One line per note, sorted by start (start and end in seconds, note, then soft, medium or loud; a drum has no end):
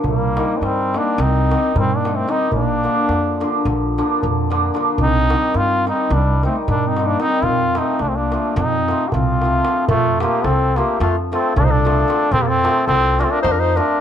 0.04 0.38 C2 medium
0.04 0.56 G3 medium
0.04 0.59 A#3 medium
0.04 darbuka dum medium
0.37 0.92 D#3 medium
0.37 0.92 G3 medium
0.37 0.52 C4 medium
0.37 0.53 D#4 medium
0.37 darbuka tek medium
0.55 0.63 A#3 medium
0.55 0.65 D4 medium
0.61 0.96 G2 medium
0.61 0.97 G3 medium
0.61 0.99 C4 loud
0.61 darbuka tek medium
0.79 darbuka tek soft
0.93 1.50 D#3 medium
0.93 1.47 G3 medium
0.93 1.21 A#3 medium
0.93 1.09 C4 medium
0.93 1.10 D#4 medium
0.93 darbuka tek medium
0.97 1.23 D4 medium
1.18 1.53 C2 loud
1.18 1.75 C4 loud
1.18 1.77 D#4 loud
1.18 darbuka tek medium
1.51 2.03 D#3 medium
1.51 2.02 G3 medium
1.51 1.67 C4 medium
1.51 1.67 D#4 medium
1.51 darbuka tek medium
1.75 2.21 G2 medium
1.75 1.96 G3 medium
1.75 1.98 C4 loud
1.75 darbuka dum medium
1.92 2.13 A#3 medium
1.92 darbuka tek soft
1.96 2.17 D4 medium
2.05 2.26 D#3 medium
2.05 2.27 G3 medium
2.05 2.20 C4 medium
2.05 2.20 D#4 medium
2.05 darbuka tek medium
2.12 2.29 A3 medium
2.12 2.32 C4 loud
2.28 2.57 D#3 medium
2.28 2.57 G3 medium
2.28 2.50 C4 medium
2.28 2.43 C4 soft
2.28 2.43 D#4 medium
2.28 2.53 D#4 loud
2.28 darbuka tek medium
2.51 2.86 A#1 medium
2.51 3.61 A#3 medium
2.51 3.63 D4 loud
2.51 darbuka dum medium
2.83 3.39 D3 medium
2.83 3.39 F3 medium
2.83 2.99 A#3 medium
2.83 3.00 D4 medium
3.09 3.43 F2 medium
3.09 darbuka tek medium
3.25 darbuka tek soft
3.40 3.97 D3 medium
3.40 3.94 F3 medium
3.40 3.56 A#3 medium
3.40 3.56 D4 medium
3.40 darbuka tek medium
3.65 4.00 A#1 loud
3.65 darbuka tek medium
3.98 4.49 D3 medium
3.98 4.49 F3 medium
3.98 4.13 A#3 medium
3.98 4.14 D4 medium
3.98 darbuka tek medium
4.23 4.69 F2 medium
4.23 darbuka dum medium
4.38 darbuka tek soft
4.50 4.73 D3 medium
4.50 4.74 F3 medium
4.50 4.66 A#3 medium
4.50 4.66 D4 medium
4.50 darbuka tek medium
4.74 5.03 D3 medium
4.74 5.03 F3 medium
4.74 4.90 A#3 medium
4.74 4.90 D4 medium
4.74 darbuka tek medium
4.98 5.32 C2 loud
4.98 5.56 C4 medium
4.98 darbuka dum medium
5.03 5.58 D#4 loud
5.29 5.85 D#3 medium
5.29 5.85 G3 medium
5.29 5.46 C4 medium
5.29 5.46 D#4 medium
5.29 darbuka tek medium
5.54 5.89 G2 medium
5.54 5.88 C4 medium
5.54 5.88 F4 loud
5.54 darbuka tek medium
5.71 darbuka tek soft
5.86 6.42 D#3 medium
5.86 6.40 G3 medium
5.86 6.02 C4 medium
5.86 6.03 D#4 medium
5.86 6.14 D#4 loud
5.86 darbuka tek medium
5.91 6.16 C4 medium
6.10 6.45 C2 loud
6.10 6.44 D4 medium
6.10 darbuka tek medium
6.15 6.46 G3 medium
6.43 6.96 D#3 medium
6.43 6.95 G3 medium
6.43 6.57 A3 medium
6.43 6.59 C4 medium
6.43 6.56 C4 medium
6.43 6.59 D#4 medium
6.43 darbuka tek soft
6.68 7.13 G2 loud
6.68 6.88 G3 medium
6.68 6.90 D4 loud
6.68 darbuka dum medium
6.83 darbuka tek soft
6.87 7.08 C4 medium
6.87 7.08 D#4 medium
6.97 7.19 D#3 medium
6.97 7.19 G3 medium
6.97 7.12 C4 medium
6.97 7.12 D#4 medium
6.97 darbuka tek medium
7.06 7.23 A#3 medium
7.06 7.22 D4 loud
7.20 7.49 D#3 medium
7.20 7.49 G3 medium
7.20 7.35 C4 medium
7.20 7.44 C4 medium
7.20 7.45 D#4 loud
7.20 7.36 D#4 medium
7.20 darbuka tek medium
7.42 7.77 F2 medium
7.42 7.78 C4 medium
7.42 7.79 F4 loud
7.42 darbuka dum medium
7.60 darbuka tek soft
7.75 8.31 F3 medium
7.75 7.91 A3 medium
7.75 7.91 C4 medium
7.75 8.03 C4 medium
7.75 8.03 D#4 medium
7.75 7.92 F4 medium
7.75 darbuka tek medium
7.88 darbuka tek soft
7.99 8.34 C2 medium
7.99 8.09 A3 medium
7.99 8.10 D4 loud
7.99 darbuka tek medium
8.09 8.18 A3 medium
8.09 8.17 C4 medium
8.16 8.57 A#3 medium
8.16 8.56 D4 medium
8.16 darbuka tek soft
8.32 8.88 F3 medium
8.32 8.47 A3 medium
8.32 8.47 C4 soft
8.32 8.48 F4 medium
8.32 darbuka tek medium
8.45 darbuka tek soft
8.56 8.90 F2 loud
8.56 9.09 C4 medium
8.56 9.10 D#4 loud
8.56 darbuka tek medium
8.56 darbuka dum medium
8.73 darbuka tek soft
8.88 9.42 F3 medium
8.88 9.05 A3 medium
8.88 9.05 C4 medium
8.88 9.05 F4 medium
8.88 darbuka tek medium
9.07 9.15 D#4 medium
9.07 9.15 G4 medium
9.12 9.59 C2 loud
9.12 9.88 C4 medium
9.12 9.88 F4 loud
9.12 darbuka dum medium
9.42 9.64 F3 medium
9.42 9.57 A3 soft
9.42 9.58 C4 soft
9.42 9.58 F4 medium
9.42 darbuka tek medium
9.53 darbuka tek soft
9.65 9.94 F3 medium
9.65 9.80 A3 medium
9.65 9.81 C4 soft
9.65 9.81 F4 medium
9.65 darbuka tek medium
9.77 darbuka tek soft
9.88 10.23 F2 loud
9.88 10.18 A3 loud
9.88 10.19 F4 medium
9.88 darbuka dum medium
10.20 10.75 F3 medium
10.20 10.36 A3 medium
10.20 10.46 A#3 medium
10.20 10.36 C4 medium
10.20 10.37 F4 medium
10.20 10.46 G4 medium
10.20 darbuka tek medium
10.44 10.78 C2 medium
10.44 10.78 C4 loud
10.44 10.80 A4 medium
10.44 darbuka tek medium
10.76 11.31 F3 medium
10.76 10.92 A3 medium
10.76 11.00 A#3 medium
10.76 10.92 C4 medium
10.76 10.92 F4 medium
10.76 11.01 G4 medium
10.76 darbuka tek medium
11.00 11.34 F2 loud
11.00 11.15 A3 medium
11.00 11.16 F4 medium
11.00 darbuka tek medium
11.17 darbuka tek soft
11.32 11.84 F3 medium
11.32 11.48 A3 medium
11.32 11.48 C4 medium
11.32 11.56 C4 medium
11.32 11.48 F4 medium
11.32 11.57 A4 medium
11.32 darbuka tek medium
11.56 12.02 C2 loud
11.56 11.67 D4 loud
11.56 11.65 A4 medium
11.56 darbuka dum medium
11.63 11.73 D#4 loud
11.63 11.72 C5 medium
11.71 12.34 D4 loud
11.71 12.32 A4 medium
11.71 darbuka tek soft
11.85 12.07 F3 medium
11.85 12.00 A3 medium
11.85 12.00 C4 medium
11.85 12.00 F4 medium
11.85 darbuka tek medium
11.98 darbuka tek soft
12.08 12.62 F3 medium
12.08 12.23 A3 medium
12.08 12.24 C4 medium
12.08 12.24 F4 medium
12.08 darbuka tek medium
12.31 12.65 F2 loud
12.31 12.44 C4 loud
12.31 12.41 A4 medium
12.31 darbuka dum medium
12.39 12.50 A#3 medium
12.39 12.48 G4 medium
12.47 12.87 C4 loud
12.47 12.87 A4 loud
12.63 13.18 F3 medium
12.63 12.79 A3 medium
12.63 12.79 C4 medium
12.63 12.80 F4 medium
12.63 darbuka tek medium
12.87 13.21 C2 medium
12.87 13.21 C4 loud
12.87 13.21 A4 medium
12.87 darbuka tek medium
13.19 13.74 F3 medium
13.19 13.35 A3 medium
13.19 13.35 C4 medium
13.19 13.25 D4 loud
13.19 13.35 F4 medium
13.19 13.26 A#4 medium
13.19 darbuka tek medium
13.24 13.33 C4 loud
13.24 13.34 A4 medium
13.32 13.41 D4 loud
13.32 13.42 A#4 medium
13.42 13.78 F2 loud
13.42 13.52 D#4 loud
13.42 13.53 C5 loud
13.42 darbuka tek medium
13.50 13.61 D4 medium
13.50 13.62 A#4 medium
13.59 13.78 D#4 loud
13.59 13.78 C5 loud
13.59 darbuka tek soft
13.76 14.01 F3 medium
13.76 13.91 A3 medium
13.76 13.91 C4 medium
13.76 14.01 D4 medium
13.76 13.92 F4 medium
13.76 14.01 A#4 medium
13.76 darbuka tek medium